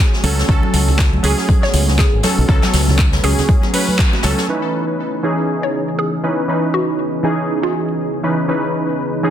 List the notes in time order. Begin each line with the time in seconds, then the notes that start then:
Already playing: F#3 A3 C#4 F#4 G#4
0.13 snare
0.23 C#2 F#3 C#4 A4, closed hi-hat, open hi-hat, high conga
0.39 snare
0.48 C#2 F#3 B3 C#4 A4, kick, closed hi-hat
0.63 high conga
0.74 C#2, closed hi-hat, open hi-hat
0.88 closed hi-hat, low conga
0.98 kick, snare, clap, closed hi-hat
1.13 high conga
1.23 C#2 F#3 C#4 G#4, closed hi-hat, open hi-hat
1.37 snare
1.49 kick, closed hi-hat, high conga
1.63 C#5, snare
1.73 C#2, closed hi-hat, open hi-hat
1.88 snare, high conga
1.99 G#4, kick, snare, clap, closed hi-hat
2.13 G#1
2.23 F#3 C#4 A4, snare, closed hi-hat, open hi-hat, high conga
2.38 B1
2.48 C#2 F#3 C#4 A4, kick, closed hi-hat
2.63 snare, clap, closed hi-hat, high conga
2.73 C#2, snare, closed hi-hat, open hi-hat
2.88 snare, low conga
2.98 kick, snare, clap, closed hi-hat
3.13 snare, closed hi-hat, high conga
3.23 C#2 F#3 C#4 G#4, snare, open hi-hat
3.38 snare, closed hi-hat, low conga
3.49 kick, closed hi-hat, high conga
3.63 snare, high bongo
3.73 F#3 C#4 B4, open hi-hat
3.88 high conga
3.98 kick, snare, clap
4.13 snare, high bongo
4.23 C#2 F#3 C#4 A4, snare, closed hi-hat, open hi-hat, high conga
4.38 snare, closed hi-hat, high bongo
4.48 C#3 E3 B3 C#4 D#4 G#4 B4
5.23 E3 C#4 D#4 G#4
5.63 C#5
5.99 G#4
6.23 E3 C#4 D#4 B4
6.48 E3 C#4 D#4 B4
6.74 F#4
7.23 E3 C#4 D#4 G#4
7.63 F#4
8.23 E3 C#4 D#4 B4
8.48 E3 C#4 D#4 B4
9.23 E3 C#4 D#4 G#4